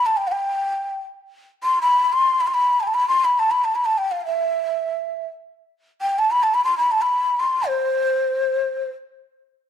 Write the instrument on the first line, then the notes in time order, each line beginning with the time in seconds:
ney
0.06 A5
0.17 G5
0.27 F5
0.31 G5
1.63 C6
1.81 B5
2.12 C6
2.40 B5
2.47 C6
2.54 B5
2.80 G5 A5
2.87 A5
2.94 B5
3.08 C6
3.24 B5
3.39 A5
3.51 B5
3.64 A5
3.75 B5
3.85 A5
3.98 G5
4.11 F5
4.25 E5
6.01 G5
6.18 A5
6.31 B5
6.43 A5
6.54 B5
6.64 C6
6.77 B5
6.91 A5
7.01 B5
7.39 C6
7.67 C5